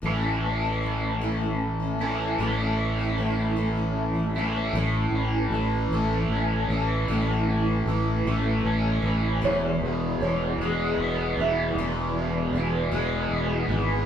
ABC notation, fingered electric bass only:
X:1
M:6/8
L:1/8
Q:3/8=51
K:A
V:1 name="Fingered electric bass" clef=bass
A,,,6 | A,,,6 | A,,, A,,, A,,, A,,, A,,, A,,, | A,,,2 A,,, A,,, A,,, A,,, |
E,,, E,,, E,,, E,,, E,,, E,,, | E,,,2 E,,, E,,, E,,, G,,, |]